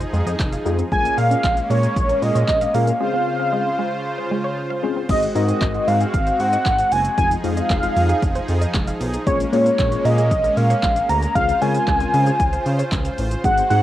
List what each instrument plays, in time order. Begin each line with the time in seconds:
Already playing: supersaw synth F3 D#4 G#4, soft synth lead D#5
0.00 synth arpeggio sound C5, closed hi-hat, shaker
0.13 analog synth bass F2, synth arpeggio sound G#3, shaker
0.26 analog synth bass F2, synth arpeggio sound D#5, closed hi-hat, shaker
0.39 analog synth bass F1, kick, clap, closed hi-hat, shaker
0.53 synth arpeggio sound F5, closed hi-hat, shaker
0.65 analog synth bass F2, synth arpeggio sound G#3, tine electric piano C4 D#4 F4 G#4, shaker
0.79 synth arpeggio sound C4, closed hi-hat, shaker
0.91 analog synth bass A#1, supersaw synth G#3 A#3 C#4, synth arpeggio sound G#3, tine electric piano A#3 C#4 F4 G#4, soft synth lead G#5, kick, closed hi-hat, shaker
1.05 synth arpeggio sound A#3, closed hi-hat, shaker
1.18 analog synth bass A#2, soft synth lead F5, open hi-hat, shaker
1.31 synth arpeggio sound C#4, closed hi-hat, shaker
1.44 analog synth bass A#1, synth arpeggio sound G#3, kick, clap, closed hi-hat, shaker
1.57 closed hi-hat, shaker
1.70 analog synth bass A#2, synth arpeggio sound G#3, soft synth lead C#5, open hi-hat, shaker
1.83 closed hi-hat, shaker
1.96 analog synth bass A#1, kick, closed hi-hat, shaker
2.09 synth arpeggio sound A#4, closed hi-hat, shaker
2.22 analog synth bass A#2, synth arpeggio sound G#3, soft synth lead D#5, open hi-hat, shaker
2.35 analog synth bass A#2, synth arpeggio sound C#5, closed hi-hat, shaker
2.48 analog synth bass A#1, kick, clap, closed hi-hat, shaker
2.61 synth arpeggio sound F5, closed hi-hat, shaker
2.74 analog synth bass A#2, synth arpeggio sound G#3, tine electric piano A#3 C#4 F4 G#4, soft synth lead F5, open hi-hat, shaker
2.87 synth arpeggio sound A#3, closed hi-hat, shaker
3.00 supersaw synth C#3 F4 C5, synth arpeggio sound G#3, tine electric piano C4 C#4 F4 G#4
3.14 synth arpeggio sound C4
3.40 synth arpeggio sound C#4
3.53 synth arpeggio sound G#3
3.79 synth arpeggio sound G#3
4.18 synth arpeggio sound C5
4.31 synth arpeggio sound G#3
4.44 synth arpeggio sound C#5
4.70 synth arpeggio sound F5
4.83 synth arpeggio sound G#3, tine electric piano C4 C#4 F4 G#4
4.96 synth arpeggio sound C4
5.09 analog synth bass G#1, supersaw synth G#3 C4 F#4, tine electric piano G#3 C4 D#4 F#4 G#4, synth arpeggio sound G#3, soft synth lead D#5, kick, closed hi-hat, crash, shaker
5.23 closed hi-hat, shaker
5.35 analog synth bass G#2, tine electric piano G#3 C4 D#4 F#4 A#4, synth arpeggio sound G#3, soft synth lead D#5, open hi-hat, shaker
5.48 synth arpeggio sound D#4, closed hi-hat, shaker
5.61 analog synth bass G#1, synth arpeggio sound G#3, kick, clap, closed hi-hat, shaker
5.74 synth arpeggio sound F#4, closed hi-hat, shaker
5.87 analog synth bass G#2, synth arpeggio sound G#3, soft synth lead F5, open hi-hat, shaker
6.01 synth arpeggio sound G#4, closed hi-hat, shaker
6.14 analog synth bass G#1, kick, closed hi-hat, shaker
6.27 synth arpeggio sound C5, closed hi-hat, shaker
6.40 analog synth bass G#2, soft synth lead F#5, open hi-hat, shaker
6.53 synth arpeggio sound D#5, closed hi-hat, shaker
6.66 analog synth bass G#1, synth arpeggio sound G#3, kick, clap, closed hi-hat, shaker
6.79 synth arpeggio sound F#5, closed hi-hat, shaker
6.92 analog synth bass F#1, soft synth lead G#5, open hi-hat, shaker
7.05 closed hi-hat, shaker
7.18 analog synth bass F1, supersaw synth F3 D#4 G#4, tine electric piano G#3 C4 D#4 F4 G#4, synth arpeggio sound G#3, soft synth lead G#5, kick, closed hi-hat, shaker
7.32 closed hi-hat, shaker
7.44 analog synth bass F2, tine electric piano G#3 C4 D#4 F4 G#4, synth arpeggio sound G#3, soft synth lead F5, open hi-hat, shaker
7.57 synth arpeggio sound D#4, closed hi-hat, shaker
7.70 analog synth bass F1, synth arpeggio sound G#3, kick, clap, closed hi-hat, shaker
7.83 synth arpeggio sound F4, closed hi-hat, shaker
7.96 analog synth bass F2, synth arpeggio sound G#3, open hi-hat, shaker
8.09 synth arpeggio sound G#4, closed hi-hat, shaker
8.23 analog synth bass F1, kick, closed hi-hat, shaker
8.35 synth arpeggio sound C5, closed hi-hat, shaker
8.48 analog synth bass F2, open hi-hat, shaker
8.61 synth arpeggio sound D#5, closed hi-hat, shaker
8.74 analog synth bass F1, synth arpeggio sound G#3, kick, clap, closed hi-hat, shaker
8.87 synth arpeggio sound F5, closed hi-hat, shaker
9.00 analog synth bass B1, open hi-hat, shaker
9.14 closed hi-hat, shaker
9.26 analog synth bass A#1, supersaw synth G#3 A#3 C#4, synth arpeggio sound G#3, tine electric piano G#3 A#3 C#4 F4 G#4, soft synth lead C#5, kick, closed hi-hat, shaker
9.40 closed hi-hat, shaker
9.52 analog synth bass A#2, tine electric piano G#3 A#3 C#4 F4 G#4, synth arpeggio sound G#3, soft synth lead C#5, open hi-hat, shaker
9.66 synth arpeggio sound C#4, closed hi-hat, shaker
9.79 analog synth bass A#1, synth arpeggio sound G#3, kick, clap, closed hi-hat, shaker
9.92 synth arpeggio sound F4, closed hi-hat, shaker
10.05 analog synth bass A#2, synth arpeggio sound G#3, soft synth lead D#5, open hi-hat, shaker
10.18 synth arpeggio sound G#4, closed hi-hat, shaker
10.31 analog synth bass A#1, kick, closed hi-hat, shaker
10.44 synth arpeggio sound A#4, closed hi-hat, shaker
10.57 analog synth bass A#2, soft synth lead F5, open hi-hat, shaker
10.70 synth arpeggio sound C#5, closed hi-hat, shaker
10.83 analog synth bass A#1, synth arpeggio sound G#3, kick, clap, closed hi-hat, shaker
10.96 synth arpeggio sound F5, closed hi-hat, shaker
11.09 analog synth bass D2, soft synth lead A#5, open hi-hat, shaker
11.22 closed hi-hat, shaker
11.35 analog synth bass C#2, supersaw synth C#3 F4 C5, tine electric piano G#3 C4 C#4 F4 G#4, synth arpeggio sound G#3, soft synth lead F5, kick, closed hi-hat, shaker
11.49 closed hi-hat, shaker
11.61 analog synth bass C#3, tine electric piano G#3 C4 C#4 F4 A#4, synth arpeggio sound G#3, soft synth lead G#5, open hi-hat, shaker
11.74 synth arpeggio sound C#4, closed hi-hat, shaker
11.87 analog synth bass C#2, synth arpeggio sound G#3, kick, clap, closed hi-hat, shaker
12.00 synth arpeggio sound F4, closed hi-hat, shaker
12.14 analog synth bass C#3, synth arpeggio sound G#3, open hi-hat, shaker
12.26 synth arpeggio sound G#4, closed hi-hat, shaker
12.40 analog synth bass C#2, kick, closed hi-hat, shaker
12.53 synth arpeggio sound C5, closed hi-hat, shaker
12.66 analog synth bass C#3, open hi-hat, shaker
12.79 synth arpeggio sound C#5, closed hi-hat, shaker
12.92 analog synth bass C#2, synth arpeggio sound G#3, kick, clap, closed hi-hat, shaker
13.05 synth arpeggio sound F5, closed hi-hat, shaker
13.18 analog synth bass A1, open hi-hat, shaker
13.31 closed hi-hat, shaker
13.44 analog synth bass G#1, supersaw synth G#3 F#4, synth arpeggio sound G#3, tine electric piano G#3 C4 D#4 F#4 G#4, soft synth lead F#5, kick, closed hi-hat, shaker
13.57 closed hi-hat, shaker
13.70 analog synth bass G#2, synth arpeggio sound G#3, tine electric piano G#3 C4 D#4 F#4 G#4, soft synth lead F#5, open hi-hat, shaker